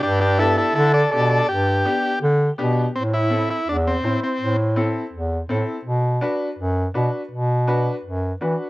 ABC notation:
X:1
M:4/4
L:1/16
Q:1/4=165
K:Ador
V:1 name="Transistor combo organ"
[DG]2 [DG]2 [EA]2 [EA]2 [EA]2 [Ad]2 [Ad]2 [Ad]2 | G8 z8 | C2 E4 E2 D2 C4 C2- | C2 z12 z2 |
z16 | z16 |]
V:2 name="Upright piano"
z4 [B,DG]2 z6 [B,DG]2 z2 | z4 [B,DG]2 z6 [B,DG]2 z2 | z4 [CEA]2 z6 [CEc]2 z2 | z4 [CEA]2 z6 [CEA]2 z2 |
z4 [DFB]2 z6 [DFB]2 z2 | z4 [DFB]2 z6 [DFB]2 z2 |]
V:3 name="Bass clarinet" clef=bass
G,,8 D,4 B,,4 | G,,4- G,, z3 D,4 B,,4 | A,,8 E,,4 A,,2 z2 | A,,8 E,,4 A,,2 z2 |
B,,4- B,, z3 F,,4 B,,2 z2 | B,,8 F,,4 E,2 z2 |]